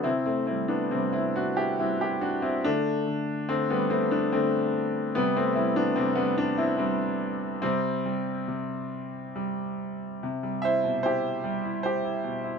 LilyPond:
<<
  \new Staff \with { instrumentName = "Grand piano" } { \time 3/4 \key c \major \tempo 4 = 72 <c' e'>16 <a c'>16 <c' e'>16 <b d'>16 <g c'>16 <c' e'>16 <d' fis'>16 <e' g'>16 <c' e'>16 <e' g'>16 <d' fis'>16 <c' e'>16 | <a d'>4 <a c'>16 <g b>16 <a c'>16 <b d'>16 <a c'>4 | <g b>16 <a c'>16 <c' e'>16 <b d'>16 <g c'>16 <g b>16 <b d'>16 <c' e'>16 <g c'>4 | <g c'>2 r4 |
r8 <c'' e''>8 <g' c''>4 <g' c''>4 | }
  \new Staff \with { instrumentName = "Grand piano" } { \clef bass \time 3/4 \key c \major c8 g8 c4 g4 | d8 d8 d4 d4 | c8 g8 c2 | c8 g8 c4 g4 |
c16 g16 e'16 b,16 e'8 g16 e'8 e'16 b,16 e'16 | }
>>